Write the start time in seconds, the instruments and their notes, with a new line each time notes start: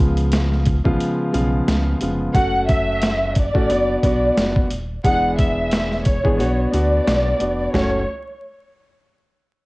Already playing: sub bass C#2, grand piano C#3 F3 G#3 B3 F4
0.00 kick
0.17 closed hi-hat
0.32 snare, closed hi-hat
0.52 snare
0.66 kick, closed hi-hat
0.84 sub bass B1, grand piano C#3 F3 G#3 B3 F4, kick
1.00 closed hi-hat
1.32 sub bass B1, grand piano C#3 F3 G#3 B3 F4, closed hi-hat
1.68 sub bass C#2, snare, closed hi-hat
2.01 sub bass F1, grand piano C#3 F3 G#3 B3 F4, closed hi-hat
2.34 sub bass F#1, grand piano A3 C#4 F#4, violin section F#5, kick, closed hi-hat
2.68 violin section E5, kick, closed hi-hat
3.02 snare, closed hi-hat
3.35 violin section D5, kick, closed hi-hat
3.54 sub bass A1, grand piano A3 C#4 F#4, kick
3.69 sub bass F#1, grand piano B3 D4 F#4, closed hi-hat
4.03 sub bass B1, grand piano B3 D4 F#4, violin section D5, kick, closed hi-hat
4.37 sub bass F#1, snare, closed hi-hat
4.56 kick
4.70 sub bass D#1, closed hi-hat
5.04 sub bass E1, grand piano E3 G#3 B3 D4 G#4, violin section F#5, kick, closed hi-hat
5.38 violin section E5, kick, closed hi-hat
5.71 snare, closed hi-hat
5.92 snare
6.05 violin section C#5, kick, closed hi-hat
6.23 sub bass G#1, grand piano E3 G#3 B3 D4 G#4, kick
6.38 sub bass B1, grand piano B3 D4 F#4, closed hi-hat
6.72 sub bass D2, grand piano B3 D4 F#4, violin section D5, closed hi-hat
7.07 sub bass B1, snare, closed hi-hat
7.40 sub bass F1, grand piano B3 D4 F#4, closed hi-hat
7.73 sub bass F#1, grand piano A3 C#4 F#4, violin section C#5, snare, floor tom